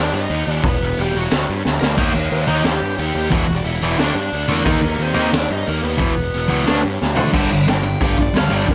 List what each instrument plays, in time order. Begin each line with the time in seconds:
Already playing: overdriven electric guitar D4 D5
0.13 picked electric bass G2, overdriven electric guitar D#4 D#5
0.30 picked electric bass D#2, open hi-hat
0.47 picked electric bass D#2, overdriven electric guitar D5
0.64 picked electric bass E1, overdriven electric guitar B3 B4, kick, open hi-hat
0.81 picked electric bass E1
0.97 picked electric bass E1, overdriven electric guitar G3 G4, open hi-hat
1.15 picked electric bass E1, overdriven electric guitar F#3 F#4
1.31 picked electric bass D2, snare, open hi-hat
1.50 picked electric bass G2
1.65 picked electric bass D2, snare
1.81 picked electric bass D2, overdriven electric guitar A#3 A#4, snare
1.97 picked electric bass D#2, distorted electric guitar D#3 A#3 D#4, kick, crash
2.16 picked electric bass D#2
2.31 picked electric bass D#2, overdriven electric guitar D#4 D#5, open hi-hat
2.47 picked electric bass D#2, distorted electric guitar D#3 A#3 D#4
2.64 picked electric bass D#2, overdriven electric guitar G4 G5, snare, open hi-hat
2.82 picked electric bass G2
2.97 picked electric bass D#2, overdriven electric guitar G4 G5, open hi-hat
3.15 picked electric bass D#2
3.31 picked electric bass E1, distorted electric guitar E2 B2 E3, overdriven electric guitar F#4 F#5, kick, open hi-hat
3.49 picked electric bass E1
3.56 overdriven electric guitar D5
3.64 picked electric bass E1, overdriven electric guitar E4 E5, open hi-hat
3.81 picked electric bass E1, distorted electric guitar E2 B2 E3
3.98 picked electric bass D2, distorted electric guitar D3 A3 D4, overdriven electric guitar D4 D5, snare, open hi-hat
4.15 picked electric bass G2
4.33 picked electric bass D2, open hi-hat
4.48 picked electric bass E2, distorted electric guitar D3 A3 D4, overdriven electric guitar A#3 A#4
4.64 picked electric bass D#2, distorted electric guitar D#3 A#3 D#4, kick, crash
4.81 picked electric bass D#2
4.99 picked electric bass D#2, overdriven electric guitar C4 C5, open hi-hat
5.14 picked electric bass D#2, distorted electric guitar D#3 A#3 D#4
5.32 picked electric bass D#2, overdriven electric guitar D4 D5, snare, open hi-hat
5.50 picked electric bass G2, overdriven electric guitar D#4 D#5
5.67 picked electric bass D#2, overdriven electric guitar A#3 A#4, open hi-hat
5.83 picked electric bass D#2, overdriven electric guitar B3 B4
5.98 picked electric bass E1, distorted electric guitar E2 B2 E3, kick, open hi-hat
6.18 picked electric bass E1
6.34 picked electric bass E1, open hi-hat
6.48 picked electric bass C#2, distorted electric guitar E2 B2 E3
6.66 picked electric bass D2, distorted electric guitar D3 A3 D4, snare, open hi-hat
6.85 picked electric bass G2
7.02 picked electric bass D2, snare
7.15 picked electric bass D2, distorted electric guitar D3 A3 D4, floor tom
7.32 picked electric bass G1, distorted electric guitar G2 D3 G3, kick, crash
7.51 picked electric bass G1, distorted electric guitar G2 D3
7.67 picked electric bass G1, distorted electric guitar G2 D3, overdriven electric guitar G5, snare, open hi-hat
7.83 distorted electric guitar G2 D3
8.00 picked electric bass G1, distorted electric guitar G2 D3 G3, overdriven electric guitar F5, kick, open hi-hat
8.17 picked electric bass G1, distorted electric guitar G2 D3, overdriven electric guitar D5, kick
8.34 picked electric bass D2, distorted electric guitar G2 D3, overdriven electric guitar F5, snare, open hi-hat
8.49 picked electric bass G1, distorted electric guitar G2 D3 G3
8.54 overdriven electric guitar D5
8.67 picked electric bass G1, distorted electric guitar G2 D3, kick, open hi-hat